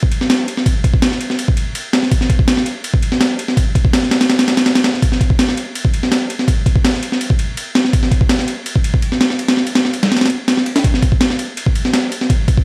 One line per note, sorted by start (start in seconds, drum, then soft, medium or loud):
0.03 kick loud
0.11 ride medium
0.21 snare soft
0.30 snare loud
0.30 ride medium
0.48 ride medium
0.57 snare soft
0.66 kick loud
0.66 ride medium
0.84 kick medium
0.84 ride medium
0.94 kick loud
1.02 snare loud
1.02 ride medium
1.12 snare soft
1.21 ride medium
1.30 snare soft
1.39 ride medium
1.48 kick loud
1.57 ride medium
1.75 ride medium
1.93 snare loud
1.93 ride medium
2.03 snare soft
2.11 kick loud
2.11 ride medium
2.21 snare soft
2.30 kick medium
2.30 ride medium
2.39 kick loud
2.48 snare loud
2.48 ride medium
2.57 snare medium
2.66 ride medium
2.84 ride medium
2.94 kick loud
3.03 ride medium
3.12 snare medium
3.21 snare loud
3.21 ride medium
3.39 ride medium
3.48 snare soft
3.57 kick loud
3.57 ride medium
3.75 kick medium
3.75 ride medium
3.85 kick loud
3.93 snare loud
3.93 ride medium
4.03 snare soft
4.11 snare loud
4.11 ride medium
4.21 snare loud
4.21 ride medium
4.30 snare loud
4.30 ride medium
4.39 snare loud
4.39 ride medium
4.48 snare loud
4.48 ride medium
4.57 snare loud
4.57 ride medium
4.66 snare loud
4.66 ride medium
4.75 snare loud
4.75 ride medium
4.84 snare loud
4.84 ride medium
4.94 snare soft
5.02 kick loud
5.02 ride medium
5.12 snare soft
5.21 kick medium
5.21 ride medium
5.30 kick loud
5.39 snare loud
5.39 ride medium
5.49 snare medium
5.57 ride medium
5.75 ride medium
5.85 kick loud
5.94 ride medium
6.03 snare soft
6.12 snare loud
6.12 ride medium
6.30 ride medium
6.39 snare soft
6.48 kick loud
6.48 ride medium
6.66 kick loud
6.66 ride medium
6.76 kick loud
6.84 snare loud
6.84 ride medium
6.94 snare soft
7.03 ride medium
7.12 snare soft
7.21 ride medium
7.30 kick loud
7.39 ride medium
7.57 ride medium
7.75 snare loud
7.75 ride medium
7.85 snare soft
7.93 kick loud
7.93 ride medium
8.03 snare soft
8.12 kick medium
8.12 ride medium
8.21 kick loud
8.29 snare loud
8.29 ride medium
8.39 snare medium
8.48 ride medium
8.66 ride medium
8.76 kick loud
8.84 ride medium
8.94 kick medium
9.02 ride medium
9.12 snare soft
9.21 snare loud
9.21 ride medium
9.30 snare medium
9.39 ride medium
9.48 snare loud
9.48 ride medium
9.57 snare medium
9.67 ride medium
9.75 snare loud
9.75 ride medium
9.85 snare medium
9.94 ride medium
10.03 snare loud
10.03 ride medium
10.12 snare medium
10.12 ride medium
10.17 snare medium
10.17 ride medium
10.21 snare medium
10.21 ride medium
10.26 snare medium
10.26 ride medium
10.30 ride medium
10.48 snare loud
10.48 ride medium
10.57 snare medium
10.66 ride medium
10.76 snare loud
10.76 ride medium
10.84 kick loud
10.84 ride medium
10.94 snare soft
11.02 kick loud
11.02 ride medium
11.12 kick loud
11.21 snare loud
11.21 ride medium
11.30 snare medium
11.39 ride medium
11.57 ride medium
11.66 kick loud
11.75 ride medium
11.85 snare soft
11.94 snare loud
11.94 ride medium
12.12 ride medium
12.21 snare soft
12.30 kick loud
12.30 ride medium
12.48 kick loud
12.48 ride medium
12.57 kick loud